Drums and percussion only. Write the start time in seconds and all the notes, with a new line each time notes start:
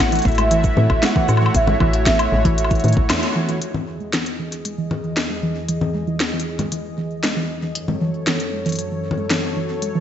0.12 closed hi-hat
0.15 closed hi-hat
0.19 closed hi-hat
0.22 kick, closed hi-hat
0.28 closed hi-hat
0.32 closed hi-hat
0.35 closed hi-hat
0.38 closed hi-hat, high woodblock
0.51 closed hi-hat
0.64 kick, cabasa
0.77 low conga
0.90 kick, high woodblock
1.03 snare, closed hi-hat
1.16 kick
1.29 cabasa, high woodblock
1.37 high woodblock
1.46 high woodblock
1.55 kick, closed hi-hat
1.67 low conga
1.80 kick, high woodblock
1.93 closed hi-hat
2.06 kick, snare, closed hi-hat
2.19 closed hi-hat, high woodblock
2.45 kick, closed hi-hat
2.58 closed hi-hat
2.64 high woodblock
2.71 kick, closed hi-hat, cabasa
2.75 closed hi-hat
2.80 closed hi-hat
2.84 closed hi-hat
2.88 closed hi-hat
2.93 closed hi-hat
2.97 kick
3.10 snare, closed hi-hat, high woodblock
3.23 closed hi-hat
3.49 closed hi-hat
3.62 closed hi-hat
3.74 low conga
4.13 snare, closed hi-hat
4.26 closed hi-hat
4.52 closed hi-hat
4.65 closed hi-hat
4.91 low conga
5.17 snare, closed hi-hat
5.69 closed hi-hat
5.81 low conga
6.20 snare, closed hi-hat
6.40 closed hi-hat
6.59 closed hi-hat, low conga
6.72 closed hi-hat
7.24 snare, closed hi-hat
7.75 closed hi-hat
7.88 low conga
8.27 snare, closed hi-hat
8.40 closed hi-hat
8.66 closed hi-hat
8.69 closed hi-hat
8.72 closed hi-hat
8.75 closed hi-hat
8.79 closed hi-hat
9.11 low conga
9.30 snare, closed hi-hat
9.82 closed hi-hat